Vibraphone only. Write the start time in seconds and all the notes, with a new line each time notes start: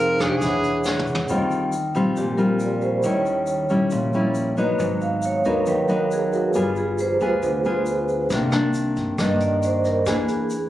Already playing: D#4 G#4 C5 F5
0.38 D4 G#4 C#5
0.45 F#5
2.18 G4
2.37 A#4
2.61 D5
2.82 C5
3.05 C#5
5.02 F5
5.25 C#5
5.46 A#4
5.68 B4
5.89 A#4
6.13 G#4
6.33 F#4
6.56 F4
6.78 G#4
7.00 C5
7.22 B4
9.20 D#5
9.42 D5
9.65 C5
9.86 A#4
10.09 G#4